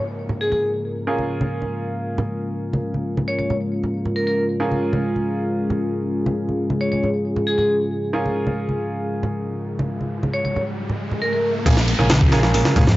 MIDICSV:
0, 0, Header, 1, 9, 480
1, 0, Start_track
1, 0, Key_signature, -5, "minor"
1, 0, Tempo, 441176
1, 1169, Time_signature, 4, 2, 24, 8
1, 14108, End_track
2, 0, Start_track
2, 0, Title_t, "Vibraphone"
2, 0, Program_c, 0, 11
2, 446, Note_on_c, 0, 68, 83
2, 524, Note_off_c, 0, 68, 0
2, 563, Note_on_c, 0, 68, 69
2, 642, Note_off_c, 0, 68, 0
2, 3568, Note_on_c, 0, 73, 81
2, 3645, Note_off_c, 0, 73, 0
2, 3684, Note_on_c, 0, 73, 68
2, 3763, Note_off_c, 0, 73, 0
2, 4525, Note_on_c, 0, 70, 81
2, 4604, Note_off_c, 0, 70, 0
2, 4647, Note_on_c, 0, 70, 72
2, 4724, Note_off_c, 0, 70, 0
2, 7406, Note_on_c, 0, 73, 82
2, 7484, Note_off_c, 0, 73, 0
2, 7526, Note_on_c, 0, 73, 71
2, 7603, Note_off_c, 0, 73, 0
2, 8126, Note_on_c, 0, 68, 84
2, 8204, Note_off_c, 0, 68, 0
2, 8247, Note_on_c, 0, 68, 70
2, 8324, Note_off_c, 0, 68, 0
2, 11245, Note_on_c, 0, 73, 86
2, 11324, Note_off_c, 0, 73, 0
2, 11367, Note_on_c, 0, 73, 73
2, 11444, Note_off_c, 0, 73, 0
2, 12204, Note_on_c, 0, 70, 85
2, 12283, Note_off_c, 0, 70, 0
2, 12325, Note_on_c, 0, 70, 74
2, 12403, Note_off_c, 0, 70, 0
2, 14108, End_track
3, 0, Start_track
3, 0, Title_t, "Grand piano"
3, 0, Program_c, 1, 0
3, 0, Note_on_c, 1, 61, 71
3, 0, Note_on_c, 1, 65, 61
3, 0, Note_on_c, 1, 68, 64
3, 0, Note_on_c, 1, 70, 77
3, 1137, Note_off_c, 1, 61, 0
3, 1137, Note_off_c, 1, 65, 0
3, 1137, Note_off_c, 1, 68, 0
3, 1137, Note_off_c, 1, 70, 0
3, 1166, Note_on_c, 1, 61, 67
3, 1166, Note_on_c, 1, 65, 63
3, 1166, Note_on_c, 1, 68, 65
3, 1166, Note_on_c, 1, 70, 79
3, 4978, Note_off_c, 1, 61, 0
3, 4978, Note_off_c, 1, 65, 0
3, 4978, Note_off_c, 1, 68, 0
3, 4978, Note_off_c, 1, 70, 0
3, 5004, Note_on_c, 1, 65, 62
3, 5004, Note_on_c, 1, 70, 76
3, 5005, Note_on_c, 1, 61, 73
3, 5005, Note_on_c, 1, 68, 65
3, 8817, Note_off_c, 1, 70, 0
3, 8818, Note_off_c, 1, 61, 0
3, 8818, Note_off_c, 1, 65, 0
3, 8818, Note_off_c, 1, 68, 0
3, 8847, Note_on_c, 1, 65, 65
3, 8847, Note_on_c, 1, 70, 78
3, 8848, Note_on_c, 1, 68, 63
3, 8849, Note_on_c, 1, 61, 72
3, 12659, Note_off_c, 1, 65, 0
3, 12659, Note_off_c, 1, 68, 0
3, 12659, Note_off_c, 1, 70, 0
3, 12660, Note_off_c, 1, 61, 0
3, 12684, Note_on_c, 1, 68, 79
3, 12685, Note_on_c, 1, 61, 89
3, 12685, Note_on_c, 1, 65, 81
3, 12685, Note_on_c, 1, 70, 94
3, 12755, Note_off_c, 1, 61, 0
3, 12755, Note_off_c, 1, 65, 0
3, 12755, Note_off_c, 1, 68, 0
3, 12755, Note_off_c, 1, 70, 0
3, 13043, Note_on_c, 1, 70, 104
3, 13044, Note_on_c, 1, 61, 97
3, 13044, Note_on_c, 1, 65, 88
3, 13045, Note_on_c, 1, 68, 88
3, 13114, Note_off_c, 1, 61, 0
3, 13114, Note_off_c, 1, 65, 0
3, 13114, Note_off_c, 1, 68, 0
3, 13114, Note_off_c, 1, 70, 0
3, 13403, Note_on_c, 1, 65, 91
3, 13404, Note_on_c, 1, 68, 89
3, 13405, Note_on_c, 1, 61, 103
3, 13405, Note_on_c, 1, 70, 111
3, 13617, Note_off_c, 1, 65, 0
3, 13618, Note_off_c, 1, 61, 0
3, 13618, Note_off_c, 1, 68, 0
3, 13618, Note_off_c, 1, 70, 0
3, 13644, Note_on_c, 1, 61, 81
3, 13645, Note_on_c, 1, 68, 73
3, 13645, Note_on_c, 1, 70, 92
3, 13647, Note_on_c, 1, 65, 73
3, 13857, Note_off_c, 1, 61, 0
3, 13858, Note_off_c, 1, 68, 0
3, 13858, Note_off_c, 1, 70, 0
3, 13859, Note_off_c, 1, 65, 0
3, 13884, Note_on_c, 1, 61, 86
3, 13884, Note_on_c, 1, 65, 78
3, 13884, Note_on_c, 1, 68, 77
3, 13885, Note_on_c, 1, 70, 93
3, 13954, Note_off_c, 1, 61, 0
3, 13954, Note_off_c, 1, 65, 0
3, 13954, Note_off_c, 1, 68, 0
3, 13955, Note_off_c, 1, 70, 0
3, 14108, End_track
4, 0, Start_track
4, 0, Title_t, "Analog synth pad"
4, 0, Program_c, 2, 89
4, 0, Note_on_c, 2, 56, 80
4, 0, Note_on_c, 2, 61, 70
4, 0, Note_on_c, 2, 65, 75
4, 0, Note_on_c, 2, 70, 85
4, 4960, Note_off_c, 2, 70, 0
4, 5009, Note_on_c, 2, 68, 89
4, 12640, Note_off_c, 2, 65, 0
4, 12641, Note_off_c, 2, 61, 0
4, 12642, Note_off_c, 2, 56, 0
4, 12645, Note_off_c, 2, 68, 0
4, 12683, Note_on_c, 2, 56, 86
4, 12684, Note_on_c, 2, 65, 76
4, 12686, Note_on_c, 2, 61, 74
4, 12688, Note_on_c, 2, 70, 87
4, 14108, Note_off_c, 2, 56, 0
4, 14108, Note_off_c, 2, 61, 0
4, 14108, Note_off_c, 2, 65, 0
4, 14108, Note_off_c, 2, 70, 0
4, 14108, End_track
5, 0, Start_track
5, 0, Title_t, "Picked electric bass"
5, 0, Program_c, 3, 34
5, 12689, Note_on_c, 3, 46, 86
5, 12741, Note_off_c, 3, 46, 0
5, 13168, Note_on_c, 3, 49, 102
5, 13516, Note_off_c, 3, 49, 0
5, 13527, Note_on_c, 3, 53, 77
5, 13615, Note_off_c, 3, 53, 0
5, 13649, Note_on_c, 3, 46, 80
5, 13736, Note_off_c, 3, 46, 0
5, 13769, Note_on_c, 3, 49, 77
5, 13821, Note_off_c, 3, 49, 0
5, 13888, Note_on_c, 3, 46, 77
5, 13975, Note_off_c, 3, 46, 0
5, 14010, Note_on_c, 3, 44, 74
5, 14096, Note_off_c, 3, 44, 0
5, 14108, End_track
6, 0, Start_track
6, 0, Title_t, "Fingered electric bass"
6, 0, Program_c, 4, 33
6, 12686, Note_on_c, 4, 34, 97
6, 12987, Note_off_c, 4, 34, 0
6, 13045, Note_on_c, 4, 34, 95
6, 13707, Note_off_c, 4, 34, 0
6, 13883, Note_on_c, 4, 37, 99
6, 13969, Note_off_c, 4, 37, 0
6, 14002, Note_on_c, 4, 41, 95
6, 14108, Note_off_c, 4, 41, 0
6, 14108, End_track
7, 0, Start_track
7, 0, Title_t, "Downlifter"
7, 0, Program_c, 5, 103
7, 0, Note_on_c, 5, 60, 62
7, 1167, Note_off_c, 5, 60, 0
7, 12685, Note_on_c, 5, 60, 77
7, 14108, Note_off_c, 5, 60, 0
7, 14108, End_track
8, 0, Start_track
8, 0, Title_t, "Riser"
8, 0, Program_c, 6, 103
8, 8845, Note_on_c, 6, 60, 68
8, 12687, Note_off_c, 6, 60, 0
8, 14108, End_track
9, 0, Start_track
9, 0, Title_t, "Drums"
9, 318, Note_on_c, 9, 64, 81
9, 427, Note_off_c, 9, 64, 0
9, 567, Note_on_c, 9, 64, 72
9, 676, Note_off_c, 9, 64, 0
9, 1290, Note_on_c, 9, 63, 60
9, 1399, Note_off_c, 9, 63, 0
9, 1533, Note_on_c, 9, 63, 99
9, 1642, Note_off_c, 9, 63, 0
9, 1761, Note_on_c, 9, 63, 68
9, 1870, Note_off_c, 9, 63, 0
9, 2373, Note_on_c, 9, 64, 101
9, 2482, Note_off_c, 9, 64, 0
9, 2975, Note_on_c, 9, 63, 88
9, 3084, Note_off_c, 9, 63, 0
9, 3201, Note_on_c, 9, 63, 63
9, 3310, Note_off_c, 9, 63, 0
9, 3453, Note_on_c, 9, 63, 94
9, 3562, Note_off_c, 9, 63, 0
9, 3692, Note_on_c, 9, 63, 58
9, 3800, Note_off_c, 9, 63, 0
9, 3810, Note_on_c, 9, 64, 82
9, 3919, Note_off_c, 9, 64, 0
9, 4173, Note_on_c, 9, 64, 75
9, 4282, Note_off_c, 9, 64, 0
9, 4412, Note_on_c, 9, 64, 70
9, 4520, Note_off_c, 9, 64, 0
9, 5130, Note_on_c, 9, 63, 63
9, 5239, Note_off_c, 9, 63, 0
9, 5363, Note_on_c, 9, 63, 91
9, 5472, Note_off_c, 9, 63, 0
9, 5614, Note_on_c, 9, 63, 59
9, 5722, Note_off_c, 9, 63, 0
9, 6203, Note_on_c, 9, 64, 86
9, 6312, Note_off_c, 9, 64, 0
9, 6814, Note_on_c, 9, 63, 94
9, 6923, Note_off_c, 9, 63, 0
9, 7058, Note_on_c, 9, 63, 59
9, 7167, Note_off_c, 9, 63, 0
9, 7289, Note_on_c, 9, 63, 88
9, 7398, Note_off_c, 9, 63, 0
9, 7539, Note_on_c, 9, 63, 58
9, 7648, Note_off_c, 9, 63, 0
9, 7655, Note_on_c, 9, 64, 74
9, 7764, Note_off_c, 9, 64, 0
9, 8012, Note_on_c, 9, 64, 81
9, 8120, Note_off_c, 9, 64, 0
9, 8251, Note_on_c, 9, 64, 68
9, 8359, Note_off_c, 9, 64, 0
9, 8983, Note_on_c, 9, 63, 61
9, 9091, Note_off_c, 9, 63, 0
9, 9211, Note_on_c, 9, 63, 88
9, 9320, Note_off_c, 9, 63, 0
9, 9452, Note_on_c, 9, 63, 62
9, 9561, Note_off_c, 9, 63, 0
9, 10043, Note_on_c, 9, 64, 83
9, 10151, Note_off_c, 9, 64, 0
9, 10654, Note_on_c, 9, 63, 82
9, 10763, Note_off_c, 9, 63, 0
9, 10888, Note_on_c, 9, 63, 58
9, 10997, Note_off_c, 9, 63, 0
9, 11131, Note_on_c, 9, 63, 94
9, 11240, Note_off_c, 9, 63, 0
9, 11369, Note_on_c, 9, 63, 57
9, 11478, Note_off_c, 9, 63, 0
9, 11493, Note_on_c, 9, 64, 80
9, 11601, Note_off_c, 9, 64, 0
9, 11854, Note_on_c, 9, 64, 78
9, 11963, Note_off_c, 9, 64, 0
9, 12092, Note_on_c, 9, 64, 76
9, 12201, Note_off_c, 9, 64, 0
9, 12686, Note_on_c, 9, 36, 108
9, 12686, Note_on_c, 9, 51, 90
9, 12795, Note_off_c, 9, 36, 0
9, 12795, Note_off_c, 9, 51, 0
9, 12805, Note_on_c, 9, 38, 42
9, 12914, Note_off_c, 9, 38, 0
9, 12925, Note_on_c, 9, 51, 69
9, 13033, Note_off_c, 9, 51, 0
9, 13062, Note_on_c, 9, 63, 94
9, 13163, Note_on_c, 9, 38, 120
9, 13163, Note_on_c, 9, 51, 88
9, 13171, Note_off_c, 9, 63, 0
9, 13271, Note_off_c, 9, 38, 0
9, 13271, Note_off_c, 9, 51, 0
9, 13285, Note_on_c, 9, 36, 95
9, 13296, Note_on_c, 9, 63, 65
9, 13394, Note_off_c, 9, 36, 0
9, 13402, Note_on_c, 9, 38, 50
9, 13402, Note_on_c, 9, 51, 68
9, 13405, Note_off_c, 9, 63, 0
9, 13511, Note_off_c, 9, 38, 0
9, 13511, Note_off_c, 9, 51, 0
9, 13525, Note_on_c, 9, 38, 51
9, 13634, Note_off_c, 9, 38, 0
9, 13645, Note_on_c, 9, 46, 83
9, 13754, Note_off_c, 9, 46, 0
9, 13766, Note_on_c, 9, 38, 54
9, 13875, Note_off_c, 9, 38, 0
9, 13884, Note_on_c, 9, 36, 98
9, 13884, Note_on_c, 9, 51, 71
9, 13894, Note_on_c, 9, 64, 98
9, 13992, Note_off_c, 9, 51, 0
9, 13993, Note_off_c, 9, 36, 0
9, 14003, Note_off_c, 9, 64, 0
9, 14007, Note_on_c, 9, 38, 41
9, 14108, Note_off_c, 9, 38, 0
9, 14108, End_track
0, 0, End_of_file